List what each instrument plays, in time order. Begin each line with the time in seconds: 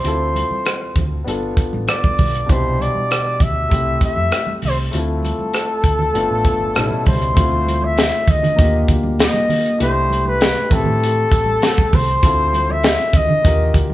Already playing: flugelhorn C5
0.03 fingered electric bass D2, grand piano C4 E4 F4, closed hi-hat
0.08 grand piano A4
0.36 closed hi-hat, high conga
0.50 muted fingered electric bass stroke, high conga
0.65 cross-stick, closed hi-hat, muted conga
0.83 muted conga
0.96 fingered electric bass D2, kick, closed hi-hat, low conga
1.24 fingered electric bass G1, grand piano B3 D4 F4, closed hi-hat
1.29 grand piano A4
1.43 muted conga
1.57 kick, closed hi-hat
1.73 fingered electric bass A1, high conga
1.88 flugelhorn D5, cross-stick, closed hi-hat, muted conga
2.04 kick, high conga
2.18 fingered electric bass B1, kick, open hi-hat, high conga, low conga
2.34 closed hi-hat
2.46 fingered electric bass C2, grand piano B2 D4 E4, kick, closed hi-hat
2.51 grand piano G4, flugelhorn C5
2.64 muted conga
2.79 flugelhorn D5, closed hi-hat, high conga
2.95 muted fingered electric bass stroke, high conga
3.11 cross-stick, closed hi-hat
3.26 muted conga
3.40 fingered electric bass D2, flugelhorn E5, kick, closed hi-hat, low conga
3.69 fingered electric bass C2, grand piano A3 C4 E4, kick, closed hi-hat, muted conga
3.73 grand piano G4
4.01 flugelhorn E5, kick, closed hi-hat
4.16 fingered electric bass F2, high conga
4.32 cross-stick, closed hi-hat
4.47 high conga
4.62 fingered electric bass C2, flugelhorn C5, open hi-hat, high conga, low conga
4.91 fingered electric bass D2, grand piano A3 C4 E4, closed hi-hat, muted conga
4.95 grand piano F4, flugelhorn A4
5.08 muted conga
5.23 closed hi-hat, high conga
5.39 muted fingered electric bass stroke, high conga
5.53 cross-stick, closed hi-hat
5.84 fingered electric bass D2, kick, closed hi-hat, low conga
5.99 low conga
6.13 fingered electric bass G1, grand piano A3 B3 D4 F4, closed hi-hat
6.31 fingered electric bass A1
6.44 fingered electric bass G1, kick, closed hi-hat
6.60 fingered electric bass G1, high conga
6.74 fingered electric bass A1, grand piano B2 G3 C#4 D#4, cross-stick, closed hi-hat, high conga
6.83 grand piano E4
6.91 muted conga, high conga
7.06 fingered electric bass C#2, flugelhorn C5, kick, open hi-hat, high conga, low conga
7.22 closed hi-hat
7.34 fingered electric bass D2, grand piano A3 C4 E4, kick, closed hi-hat
7.38 grand piano F4
7.52 muted conga
7.66 closed hi-hat, high conga
7.82 flugelhorn E5, high conga
7.97 snare, closed hi-hat, tambourine, muted conga
8.28 fingered electric bass D2, flugelhorn D#5, kick, closed hi-hat, low conga
8.43 fingered electric bass D3, closed hi-hat, low conga
8.56 fingered electric bass D#2, grand piano D3 A#3 F4, kick, closed hi-hat, muted conga
8.60 grand piano G4
8.74 muted conga
8.88 fingered electric bass D2, kick, closed hi-hat
9.03 high conga
9.19 flugelhorn D#5, snare, closed hi-hat, tambourine, muted conga, high conga
9.34 muted conga, high conga
9.50 open hi-hat, high conga, low conga
9.66 closed hi-hat
9.78 fingered electric bass C2, grand piano A3 D4 E4 G4, flugelhorn C5, closed hi-hat
10.10 closed hi-hat, high conga
10.25 flugelhorn B4, high conga
10.40 snare, closed hi-hat, tambourine, muted conga
10.56 muted conga
10.68 fingered electric bass A1, grand piano A3 C4 E4, kick, closed hi-hat, low conga
10.73 grand piano G4, flugelhorn A4
10.85 fingered electric bass A2, low conga
11.00 closed hi-hat, muted conga
11.16 muted conga
11.31 fingered electric bass A1, kick, closed hi-hat
11.46 high conga
11.62 snare, closed hi-hat, tambourine, high conga
11.77 kick, high conga
11.93 fingered electric bass C2, flugelhorn C5, kick, open hi-hat, high conga, low conga
12.08 closed hi-hat
12.21 fingered electric bass D2, grand piano C4 E4 F4, kick, closed hi-hat, muted conga
12.25 grand piano A4
12.53 closed hi-hat, high conga
12.69 flugelhorn E5, high conga
12.83 snare, closed hi-hat, tambourine, muted conga
13.00 muted conga
13.13 fingered electric bass D2, flugelhorn D#5, kick, closed hi-hat, low conga
13.28 fingered electric bass D3, low conga
13.42 fingered electric bass D#2, grand piano D3 F4 G4, kick, closed hi-hat, muted conga
13.47 grand piano A#4
13.74 fingered electric bass D2, kick, closed hi-hat
13.90 high conga